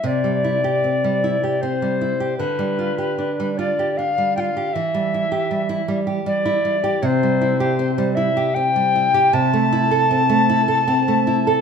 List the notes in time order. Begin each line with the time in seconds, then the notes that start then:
0.02 C3 E5
0.07 D5
0.24 G3
0.44 E4
0.64 G4
0.84 C4
1.04 G3
1.24 E4
1.44 G4
1.61 C4 C5
1.82 G3
2.01 E4
2.20 G4
2.38 D3 B4
2.59 G3
2.79 F4
2.98 G4
3.18 D4
3.40 G3
3.57 F4 D5
3.79 G4
3.97 D4 F5
4.18 G3
4.37 F4 F5 G5
4.57 G4
4.73 E3 E5
4.94 G3
5.14 E4
5.32 G4
5.51 G3
5.69 E4
5.88 G3
6.07 G4
6.26 G3 D5
6.45 E4
6.65 G3
6.84 G4
7.02 C3 C5 C#5
7.23 G3
7.42 E4
7.60 G4
7.79 C4
7.98 G3
8.15 E4 E5
8.37 G4
8.54 C4 G5
8.76 G3
8.96 E4
9.14 G4
9.33 C3 A5
9.53 A3
9.72 E4
9.91 A4
10.11 C4
10.29 A3
10.50 E4
10.68 A4
10.88 C4
11.08 A3
11.27 E4
11.47 A4